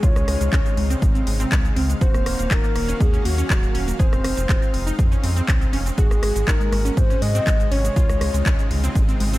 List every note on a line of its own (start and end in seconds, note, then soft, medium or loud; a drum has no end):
0.00 0.12 C#2 loud
0.00 1.97 C3 medium
0.00 1.99 C#3 medium
0.00 1.97 G#3 medium
0.00 1.99 D#4 medium
0.00 0.12 F4 loud
0.00 1.02 C#5 loud
0.00 5.94 F5 medium
0.00 kick loud
0.00 closed hi-hat medium
0.00 cabasa medium
0.16 0.24 C#2 medium
0.16 0.24 G#3 medium
0.16 cross-stick medium
0.16 closed hi-hat soft
0.16 cabasa soft
0.28 0.37 C#2 medium
0.28 0.37 G#3 medium
0.28 cross-stick medium
0.28 open hi-hat loud
0.41 0.49 C#2 loud
0.41 0.49 G#3 medium
0.41 closed hi-hat medium
0.41 cabasa medium
0.52 0.62 C#2 loud
0.52 0.61 C#4 loud
0.52 kick loud
0.52 clap loud
0.52 closed hi-hat medium
0.52 cabasa medium
0.66 0.74 G#3 medium
0.66 closed hi-hat soft
0.66 cabasa soft
0.77 0.95 C#2 medium
0.77 0.86 G#3 medium
0.77 open hi-hat loud
0.90 0.98 C4 medium
0.90 closed hi-hat medium
0.90 cabasa medium
1.02 1.20 G#1 medium
1.02 1.11 G#3 medium
1.02 kick loud
1.02 closed hi-hat medium
1.02 cabasa medium
1.15 1.23 C4 medium
1.15 closed hi-hat soft
1.15 cabasa soft
1.27 1.45 G#1 medium
1.27 1.36 G#3 medium
1.27 open hi-hat loud
1.40 1.48 C4 medium
1.40 closed hi-hat medium
1.40 cabasa medium
1.52 1.70 C#2 medium
1.52 1.61 G#3 medium
1.52 kick loud
1.52 clap loud
1.52 closed hi-hat medium
1.52 cabasa medium
1.65 1.73 G#3 medium
1.65 closed hi-hat soft
1.65 cabasa soft
1.76 1.95 C#2 loud
1.76 1.85 C4 medium
1.76 open hi-hat loud
1.89 1.97 G#3 medium
1.89 closed hi-hat medium
1.89 cabasa medium
2.01 2.11 D#1 loud
2.01 3.98 D#3 medium
2.01 3.98 A#3 medium
2.01 3.98 C#4 medium
2.01 2.10 F#4 loud
2.01 3.98 F#4 medium
2.01 2.53 C5 loud
2.01 kick loud
2.01 closed hi-hat soft
2.01 cabasa medium
2.14 2.23 D#1 medium
2.14 2.22 A#3 medium
2.14 cross-stick medium
2.14 closed hi-hat soft
2.14 cabasa soft
2.26 2.35 D#1 medium
2.26 2.35 A#3 medium
2.26 cross-stick medium
2.26 open hi-hat loud
2.39 2.48 D#1 loud
2.39 2.47 A#3 medium
2.39 closed hi-hat medium
2.39 cabasa medium
2.51 2.60 D#1 loud
2.51 2.60 D#4 loud
2.51 3.02 A#4 loud
2.51 kick loud
2.51 clap loud
2.51 closed hi-hat medium
2.51 cabasa medium
2.64 2.72 A#3 medium
2.64 closed hi-hat soft
2.64 cabasa soft
2.75 2.94 D#1 medium
2.75 2.84 A#3 medium
2.75 cross-stick medium
2.75 open hi-hat loud
2.89 2.97 C#4 medium
2.89 closed hi-hat medium
2.89 cabasa medium
3.00 3.19 D#2 medium
3.00 3.09 A#3 medium
3.00 3.27 G#4 loud
3.00 kick loud
3.00 closed hi-hat medium
3.00 cabasa medium
3.14 3.22 C#4 medium
3.14 closed hi-hat soft
3.14 cabasa soft
3.25 3.43 D#2 medium
3.25 3.34 A#3 medium
3.25 3.99 F#4 loud
3.25 open hi-hat loud
3.38 3.46 C#4 medium
3.38 closed hi-hat soft
3.38 cabasa medium
3.50 3.68 D#1 medium
3.50 3.59 A#3 medium
3.50 kick loud
3.50 clap loud
3.50 closed hi-hat medium
3.50 cabasa medium
3.63 3.71 A#3 medium
3.63 closed hi-hat soft
3.63 cabasa soft
3.75 3.93 D#1 loud
3.75 3.84 C#4 medium
3.75 open hi-hat loud
3.88 3.96 A#3 medium
3.88 closed hi-hat medium
3.88 cabasa medium
3.99 4.09 F1 loud
3.99 9.38 G#3 medium
3.99 5.96 D#4 medium
3.99 4.08 G#4 loud
3.99 4.95 C5 loud
3.99 kick loud
3.99 closed hi-hat soft
3.99 cabasa medium
4.12 4.21 F1 medium
4.12 4.21 C4 medium
4.12 cross-stick medium
4.12 closed hi-hat soft
4.12 cabasa soft
4.24 4.34 F1 medium
4.24 4.33 C4 medium
4.24 cross-stick medium
4.24 open hi-hat loud
4.37 4.46 F1 loud
4.37 4.45 C4 medium
4.37 closed hi-hat soft
4.37 cabasa medium
4.49 4.59 F1 loud
4.49 4.58 F4 medium
4.49 kick loud
4.49 clap loud
4.49 closed hi-hat medium
4.49 cabasa medium
4.62 4.70 C4 medium
4.62 closed hi-hat soft
4.62 cabasa soft
4.74 4.92 F1 medium
4.74 4.83 C4 medium
4.74 open hi-hat loud
4.87 4.95 D#4 medium
4.87 closed hi-hat soft
4.87 cabasa medium
4.99 5.17 F2 medium
4.99 5.08 C4 medium
4.99 kick loud
4.99 closed hi-hat soft
4.99 cabasa medium
5.12 5.20 C#4 medium
5.12 closed hi-hat soft
5.12 cabasa soft
5.23 5.42 F2 medium
5.23 5.32 C4 medium
5.23 open hi-hat loud
5.36 5.45 C4 medium
5.36 closed hi-hat soft
5.36 cabasa medium
5.48 5.67 C2 loud
5.48 5.57 C4 medium
5.48 kick loud
5.48 clap loud
5.48 closed hi-hat medium
5.48 cabasa medium
5.61 5.69 C4 medium
5.61 closed hi-hat soft
5.61 cabasa soft
5.73 5.91 F1 medium
5.73 5.82 C#4 medium
5.73 open hi-hat loud
5.86 5.94 C4 medium
5.86 closed hi-hat soft
5.86 cabasa medium
5.98 6.07 G#1 medium
5.98 9.38 C3 medium
5.98 6.07 F#4 loud
5.98 7.94 F#4 medium
5.98 6.49 G#4 medium
5.98 kick loud
5.98 closed hi-hat medium
5.98 cabasa medium
6.11 6.19 G#1 medium
6.11 6.19 G#3 medium
6.11 cross-stick medium
6.11 closed hi-hat soft
6.11 cabasa soft
6.23 6.32 G#1 medium
6.23 6.32 G#3 medium
6.23 cross-stick medium
6.23 open hi-hat loud
6.36 6.44 G#1 loud
6.36 6.44 G#3 medium
6.36 closed hi-hat medium
6.36 cabasa medium
6.47 6.57 G#1 loud
6.47 6.56 D#4 medium
6.47 6.98 A#4 loud
6.47 kick loud
6.47 clap loud
6.47 closed hi-hat medium
6.47 cabasa medium
6.60 6.68 G#3 medium
6.60 closed hi-hat soft
6.60 cabasa soft
6.72 6.90 G#1 medium
6.72 6.81 G#3 medium
6.72 cross-stick medium
6.72 open hi-hat loud
6.85 6.93 C#4 medium
6.85 closed hi-hat soft
6.85 cabasa medium
6.97 7.15 G#2 medium
6.97 7.06 G#3 medium
6.97 7.23 C5 loud
6.97 kick loud
6.97 closed hi-hat soft
6.97 cabasa medium
7.10 7.18 C#4 medium
7.10 closed hi-hat soft
7.10 cabasa soft
7.22 7.40 G#2 medium
7.22 7.31 G#3 medium
7.22 7.71 D#5 loud
7.22 open hi-hat loud
7.35 7.43 C4 loud
7.35 closed hi-hat soft
7.35 cabasa medium
7.47 7.65 G#1 medium
7.47 7.56 G#3 medium
7.47 kick loud
7.47 clap loud
7.47 closed hi-hat medium
7.47 cabasa medium
7.60 7.68 G#3 medium
7.60 closed hi-hat soft
7.60 cabasa soft
7.71 7.90 G#1 loud
7.71 7.80 C#4 medium
7.71 8.67 C#5 loud
7.71 open hi-hat loud
7.84 7.93 G#3 medium
7.84 closed hi-hat soft
7.84 cabasa medium
7.96 8.06 C#2 loud
7.96 9.38 C#3 medium
7.96 9.38 D#4 medium
7.96 8.05 F4 loud
7.96 9.38 F4 medium
7.96 kick loud
7.96 closed hi-hat medium
7.96 cabasa medium
8.09 8.18 C#2 medium
8.09 8.17 G#3 medium
8.09 cross-stick medium
8.09 closed hi-hat soft
8.09 cabasa soft
8.21 8.30 C#2 medium
8.21 8.30 G#3 medium
8.21 cross-stick medium
8.21 open hi-hat loud
8.34 8.42 C#2 loud
8.34 8.42 G#3 medium
8.34 closed hi-hat medium
8.34 cabasa medium
8.46 8.55 C#2 loud
8.46 8.55 C#4 loud
8.46 kick loud
8.46 clap loud
8.46 closed hi-hat medium
8.46 cabasa medium
8.59 8.67 G#3 medium
8.59 closed hi-hat soft
8.59 cabasa soft
8.70 8.89 C#2 medium
8.70 8.80 G#3 medium
8.70 open hi-hat loud
8.84 8.92 C4 medium
8.84 closed hi-hat medium
8.84 cabasa medium
8.95 9.14 G#1 medium
8.95 9.04 G#3 medium
8.95 kick loud
8.95 closed hi-hat medium
8.95 cabasa medium
9.09 9.17 C4 medium
9.09 closed hi-hat soft
9.09 cabasa soft
9.20 9.38 G#1 medium
9.20 9.29 G#3 medium
9.20 open hi-hat loud
9.33 9.38 C4 medium
9.33 closed hi-hat medium
9.33 cabasa medium